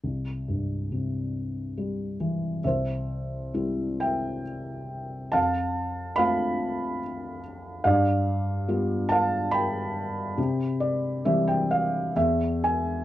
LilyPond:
<<
  \new Staff \with { instrumentName = "Felt piano" } { \time 3/4 \key c \major \tempo 4 = 70 << { r2. | <c'' e''>4. <e'' g''>4. | <f'' a''>4 <f'' b''>4. r8 | <d'' f''>4. <f'' a''>8 <g'' b''>4~ |
<g'' b''>2 r4 | } \\ { r2. | r2. | r2. | r2. |
r8 d''8 e''16 g''16 f''8 e''8 aes''8 | } >> }
  \new Staff \with { instrumentName = "Felt piano" } { \clef bass \time 3/4 \key c \major c,8 g,8 c4 g8 e8 | c,4 <g c' e'>4 r4 | f,4 <a c' f'>4 r4 | g,4 <g b f'>4 r4 |
c4 <e g c'>4 e,4 | }
>>